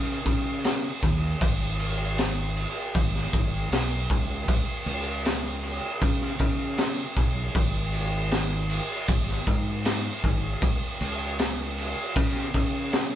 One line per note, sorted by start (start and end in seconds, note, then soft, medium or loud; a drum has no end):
0.00 0.18 C#3 loud
0.25 0.87 C#3 loud
0.25 kick loud
0.25 crash medium
0.64 snare loud
0.64 crash medium
1.03 1.33 D#2 loud
1.03 kick medium
1.03 crash medium
1.41 2.65 G#1 loud
1.41 kick loud
1.41 crash loud
1.79 crash medium
2.18 snare loud
2.18 crash medium
2.57 crash medium
2.95 3.26 G#1 medium
2.95 kick loud
2.95 crash medium
3.15 snare soft
3.33 3.67 G#1 medium
3.33 kick medium
3.33 crash medium
3.71 4.06 B1 loud
3.71 snare loud
3.71 crash loud
4.10 4.44 C#2 loud
4.10 kick loud
4.10 crash medium
4.48 4.63 C#2 medium
4.48 kick loud
4.48 crash loud
4.86 5.79 C#2 loud
4.86 crash medium
5.25 snare loud
5.25 crash loud
5.63 crash medium
6.02 6.32 C#3 loud
6.02 kick loud
6.02 crash medium
6.21 snare soft
6.39 7.02 C#3 loud
6.39 kick loud
6.39 crash medium
6.78 snare loud
6.78 crash loud
7.16 7.47 B1 loud
7.16 kick medium
7.16 crash medium
7.55 8.79 G#1 medium
7.55 kick loud
7.55 crash loud
7.93 crash medium
8.31 snare loud
8.31 crash loud
8.70 crash medium
9.08 9.39 G#1 loud
9.08 kick loud
9.08 crash loud
9.28 snare soft
9.47 10.09 G#2 medium
9.47 kick medium
9.47 crash medium
9.85 snare loud
9.85 crash loud
10.24 10.55 G#1 loud
10.24 kick medium
10.24 crash medium
10.62 10.78 C#2 medium
10.62 kick loud
10.62 crash loud
11.01 11.93 C#2 loud
11.01 crash medium
11.39 snare loud
11.39 crash medium
11.78 crash medium
12.16 12.47 C#3 loud
12.16 kick loud
12.16 crash medium
12.36 snare soft
12.54 13.15 C#3 loud
12.54 kick medium
12.54 crash medium
12.93 snare loud
12.93 crash medium